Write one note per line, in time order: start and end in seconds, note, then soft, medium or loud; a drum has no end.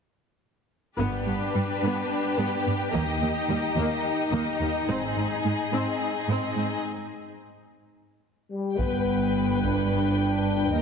0.97 1.24 G1 soft
0.97 1.06 G2 soft
0.97 1.24 B3 soft
0.97 2.89 D4 soft
0.97 4.85 G4 soft
0.97 2.89 B4 soft
1.26 1.34 G2 soft
1.26 1.34 B3 soft
1.54 1.63 G2 soft
1.54 1.62 G3 soft
1.82 1.91 G2 soft
1.82 2.08 B3 soft
2.37 2.46 G2 soft
2.37 2.63 B3 soft
2.64 2.74 G2 soft
2.64 2.72 B3 soft
2.91 3.19 D#2 soft
2.91 3.01 D#2 soft
2.91 3.18 A#3 soft
2.91 6.82 D#4 soft
2.91 6.80 D#5 soft
3.21 3.30 D#2 soft
3.21 3.29 A#3 soft
3.49 3.57 D#2 soft
3.49 3.57 G3 soft
3.76 3.84 D#2 soft
3.76 4.03 A#3 soft
4.32 4.40 D#2 soft
4.32 4.58 A#3 soft
4.60 4.68 D#2 soft
4.60 4.69 A#3 soft
4.88 5.14 G#1 soft
4.88 4.96 G#2 soft
4.88 5.15 C4 soft
4.88 6.79 G#4 soft
5.16 5.24 G#2 soft
5.16 5.25 C4 soft
5.44 5.52 G#2 soft
5.44 5.53 G#3 soft
5.72 5.80 G#2 soft
5.72 5.98 C4 soft
6.27 6.35 G#2 soft
6.27 6.54 C4 soft
6.55 6.63 G#2 soft
6.55 6.65 C4 soft
8.52 8.77 G3 soft
8.76 10.69 G1 soft
8.76 10.70 G2 soft
8.76 9.62 B3 soft
8.76 10.70 B4 soft
8.76 10.82 G5 soft
8.76 taiko soft
9.62 10.72 D4 soft
9.62 taiko soft
10.72 10.82 D#2 soft
10.72 10.82 D#4 soft
10.72 10.82 A#4 soft
10.72 10.82 D#5 soft